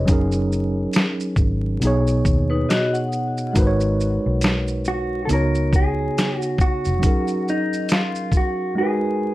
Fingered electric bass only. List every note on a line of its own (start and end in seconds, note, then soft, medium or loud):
0.08 0.86 F#1 loud
1.37 1.76 G#1 medium
1.83 2.21 B1 medium
2.26 2.64 D#2 medium
3.56 4.17 G#1 loud
4.26 5.26 B1 medium
5.30 6.08 C#2 medium
6.86 7.02 F1 medium